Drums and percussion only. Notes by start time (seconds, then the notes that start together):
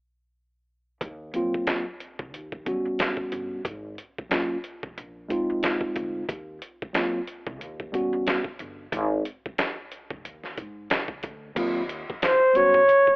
1.01 kick, closed hi-hat
1.34 closed hi-hat
1.54 kick
1.67 snare, closed hi-hat
2.00 closed hi-hat
2.19 kick
2.34 closed hi-hat
2.52 kick
2.66 kick, closed hi-hat
2.99 snare, closed hi-hat
3.17 kick
3.32 closed hi-hat
3.65 kick, closed hi-hat
3.98 closed hi-hat
4.18 kick
4.31 snare, closed hi-hat
4.64 closed hi-hat
4.83 kick
4.98 closed hi-hat
5.30 kick, closed hi-hat
5.63 snare, closed hi-hat
5.81 kick
5.96 kick, closed hi-hat
6.29 kick, closed hi-hat
6.62 closed hi-hat
6.82 kick
6.94 snare, closed hi-hat
7.27 closed hi-hat
7.47 kick
7.61 closed hi-hat
7.80 kick
7.94 kick, closed hi-hat
8.27 snare, closed hi-hat
8.44 kick
8.59 closed hi-hat
8.92 kick, closed hi-hat
9.25 closed hi-hat
9.46 kick
9.58 snare, closed hi-hat
9.92 closed hi-hat
10.10 kick
10.25 closed hi-hat
10.44 snare
10.57 kick, closed hi-hat
10.90 snare, closed hi-hat
11.08 kick
11.23 kick, closed hi-hat
11.56 kick, closed hi-hat, crash
11.89 closed hi-hat
12.10 kick
12.22 snare, closed hi-hat
12.55 closed hi-hat
12.74 kick
12.89 closed hi-hat
13.07 kick